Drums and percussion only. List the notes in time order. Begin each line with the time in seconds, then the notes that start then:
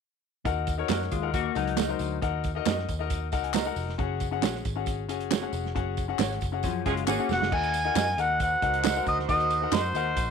0.45 kick, closed hi-hat, tambourine
0.67 kick, closed hi-hat, tambourine
0.89 snare, clap, closed hi-hat, tambourine
1.02 snare
1.11 kick, closed hi-hat, tambourine
1.34 kick, closed hi-hat, tambourine
1.55 closed hi-hat, tambourine
1.68 closed hi-hat
1.77 snare, clap, closed hi-hat, tambourine
1.99 closed hi-hat, tambourine
2.22 kick, closed hi-hat
2.44 kick, closed hi-hat, tambourine
2.66 snare, clap, closed hi-hat, tambourine
2.79 snare
2.88 kick, closed hi-hat, tambourine
3.10 kick, closed hi-hat, tambourine
3.32 kick, closed hi-hat, tambourine
3.44 closed hi-hat
3.54 snare, clap, closed hi-hat, tambourine
3.76 open hi-hat, tambourine
3.89 snare
3.99 kick, closed hi-hat
4.20 kick, closed hi-hat, tambourine
4.43 snare, clap, closed hi-hat, tambourine
4.55 snare
4.65 kick, closed hi-hat, tambourine
4.86 kick, closed hi-hat, tambourine
5.09 closed hi-hat, tambourine
5.20 closed hi-hat
5.31 snare, clap, closed hi-hat, tambourine
5.53 closed hi-hat, tambourine
5.66 snare
5.76 kick, closed hi-hat
5.97 kick, closed hi-hat, tambourine
6.19 snare, clap, closed hi-hat, tambourine
6.32 snare
6.41 kick, closed hi-hat, tambourine
6.63 kick, closed hi-hat, tambourine
6.86 kick, closed hi-hat, tambourine
6.97 closed hi-hat
7.07 clap, tambourine
7.29 snare, tambourine
7.42 snare
7.52 kick, crash
7.63 closed hi-hat
7.74 closed hi-hat, tambourine
7.96 snare, clap, closed hi-hat, tambourine
8.08 snare
8.18 closed hi-hat, tambourine
8.40 kick, closed hi-hat, tambourine
8.62 kick, closed hi-hat
8.74 closed hi-hat
8.84 snare, clap, closed hi-hat, tambourine
9.06 kick, closed hi-hat, tambourine
9.19 snare
9.29 kick, closed hi-hat, tambourine
9.40 closed hi-hat
9.50 closed hi-hat, tambourine
9.72 snare, clap, closed hi-hat, tambourine
9.95 closed hi-hat, tambourine
10.17 kick, closed hi-hat, tambourine